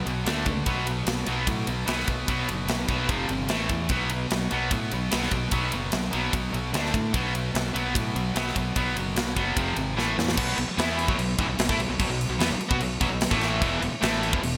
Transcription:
Already playing: B2 F#3 B3
0.06 B1 B2 F#3, ride
0.26 D2 D3 A3 D4, snare, ride
0.46 C#2 D3 A3, kick, ride
0.66 B1 B2 F#3 B3, kick, ride
0.87 B2 F#3, ride
1.06 B1 B2 F#3, snare, ride
1.26 B1 B2 F#3 B3, ride
1.47 A2 B2 F#3, kick, ride
1.67 B1 B2 F#3, ride
1.88 B1 B2 F#3 B3, snare, ride
2.00 snare
2.07 B1 B2 F#3, kick, ride
2.28 B1 B2 F#3 B3, kick, ride
2.49 F#1 B2 F#3, ride
2.68 B1 B2 F#3, snare, ride
2.88 B1 B2 F#3 B3, kick, ride
3.09 F1 F2 C3 F3, kick, ride
3.29 G1 F2 C3, ride
3.49 A1 A2 E3 A3, snare, ride
3.69 E2 A2 E3, kick, ride
3.89 B1 B2 F#3 B3, kick, ride
4.10 B2 F#3, ride
4.31 B1 B2 F#3, snare, ride
4.51 B1 B2 F#3 B3, ride
4.71 A2 B2 F#3, kick, ride
4.91 B1 B2 F#3, ride
5.12 B1 B2 F#3 B3, snare, ride
5.23 snare
5.31 B1 B2 F#3, kick, ride
5.51 B1 B2 F#3 B3, kick, ride
5.72 F#1 B2 F#3, ride
5.92 B1 B2 F#3, snare, ride
6.13 B1 B2 F#3 B3, ride
6.33 B1 B2 F#3, kick, ride
6.53 B1 B2 F#3, ride
6.72 D2 D3 A3 D4, snare, ride
6.86 snare
6.93 A2 D3 A3, kick, ride
7.13 B1 B2 F#3 B3, kick, ride
7.34 B2 F#3, ride
7.54 B1 B2 F#3, snare, ride
7.73 B1 B2 F#3 B3, ride
7.94 A2 B2 F#3, kick, ride
8.15 B1 B2 F#3, ride
8.35 B1 B2 F#3 B3, snare, ride
8.48 snare
8.56 B1 B2 F#3, kick, ride
8.76 B1 B2 F#3 B3, kick, ride
8.96 F#1 B2 F#3, ride
9.16 B1 B2 F#3, snare, ride
9.36 F#1 B2 F#3 B3, kick, ride
9.56 F1 F2 C3 F3, kick, ride
9.76 G#1 F2 C3, ride
9.96 A1 A2 E3 A3, snare
10.17 E2 A2 E3, snare
10.28 snare
10.36 B1 B2 F#3 B3, kick, crash
10.57 B1 B2 F#3, crash
10.67 muted distorted electric guitar stroke, muted fingered electric bass stroke
10.78 E2 E3 B3 E4, snare, crash
10.99 crash
11.08 B1 B2 F#3, kick
11.18 B1 B2 F#3, crash
11.39 A1 A2 E3, kick, crash
11.48 B1 B2 F#3
11.58 B1 B2 F#3, snare, crash
11.69 A2 A3 E4, kick
11.79 B1 B2 F#3, crash
11.89 B1 B2 F#3
12.00 B1 B2 F#3, kick, crash
12.09 B1 B2 F#3
12.21 crash
12.29 B1 B2 F#3
12.39 E2 E3 B3, snare, crash
12.49 B1 B2 F#3
12.60 muted fingered electric bass stroke, muted distorted electric guitar stroke, crash
12.71 B2 B3 F#4, kick
12.80 B1 B2 F#3, crash
13.01 B1 B2 F#3, kick, crash
13.10 B1 B2 F#3
13.21 snare, crash
13.31 A1 A2 E3 A3, kick
13.41 snare, crash
13.61 E1 E2 B2 E3, kick, crash
13.81 E1 E2 B2, crash
13.92 muted fingered electric bass stroke, muted distorted electric guitar stroke
14.02 A1 A2 E3 A3, snare, crash
14.23 crash
14.33 E1 E2 B2, kick
14.43 E1 E2 B2, crash

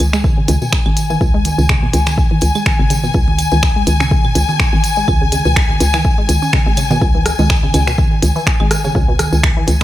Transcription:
Already playing: G#5
0.00 C#2, closed hi-hat, tambourine, claves
0.13 G#3, finger snap, tambourine
0.24 kick, tambourine, high conga
0.38 C#3
0.48 C#2 C#3, closed hi-hat, tambourine, high conga, low conga
0.62 B2, tambourine
0.73 finger snap, kick, tambourine
0.86 G#1, high conga, claves
0.97 closed hi-hat, tambourine
1.10 E3, tambourine, high conga
1.21 C#2, kick, tambourine
1.34 G#3
1.45 closed hi-hat, tambourine, high conga
1.58 C#2 C#3, tambourine
1.69 C#3, finger snap, kick, tambourine, high conga, claves
1.83 B2
1.93 C#2, closed hi-hat, tambourine, low conga
2.06 finger snap, tambourine, high conga
2.18 kick, tambourine
2.31 E3, high conga
2.41 C#2, closed hi-hat, tambourine
2.55 G#3, tambourine, claves
2.66 finger snap, kick, tambourine, high conga
2.79 G#1 C#3
2.90 C#3, closed hi-hat, tambourine, high conga
3.04 B2, tambourine
3.14 C#2, kick, tambourine
3.28 high conga
3.38 closed hi-hat, tambourine, claves
3.52 C#2 E3, tambourine, high conga
3.63 finger snap, kick, tambourine
3.76 G#3
3.87 C#2, closed hi-hat, tambourine, high conga
4.00 C#3, finger snap, tambourine
4.11 C#3, kick, tambourine, high conga
4.25 B2, claves
4.35 C#2, closed hi-hat, tambourine, low conga
4.49 tambourine, high conga
4.59 finger snap, kick, tambourine
4.73 G#1 E3, high conga
4.84 closed hi-hat, tambourine
4.96 G#3, tambourine
5.08 C#2, kick, tambourine, high conga, claves
5.21 C#3
5.32 C#3, closed hi-hat, tambourine, high conga
5.45 C#2 B2, tambourine
5.56 finger snap, kick, tambourine
5.70 high conga
5.80 C#2, closed hi-hat, tambourine, low conga
5.94 E3, finger snap, tambourine, high conga, claves
6.04 kick, tambourine
6.18 G#3
6.29 C#2, closed hi-hat, tambourine, high conga
6.42 C#4, tambourine
6.53 C#3, finger snap, kick, high conga
6.66 G#1 G#3
6.77 C#3, closed hi-hat, tambourine, claves
6.91 B2, tambourine, high conga, low conga
7.01 C#2, kick, tambourine, high conga
7.15 E3
7.26 cross-stick, closed hi-hat, tambourine
7.39 C#2 G#3, tambourine, high conga
7.50 finger snap, kick, tambourine
7.63 C#3, high conga
7.74 C#2 C#3, closed hi-hat, tambourine, claves
7.87 B2, finger snap, tambourine
7.98 kick, tambourine, high conga
8.22 C#2, closed hi-hat, tambourine, high conga, low conga
8.36 E3, tambourine
8.47 finger snap, kick, tambourine
8.60 G#1 G#3, high conga, claves
8.71 cross-stick, closed hi-hat, tambourine
8.84 C#3, tambourine, high conga
8.95 C#2 C#3, kick, tambourine
9.08 B2
9.19 cross-stick, closed hi-hat, tambourine, high conga
9.33 C#2, tambourine
9.43 finger snap, kick, high conga, claves
9.57 E3
9.67 C#2, closed hi-hat, tambourine, low conga
9.81 tambourine

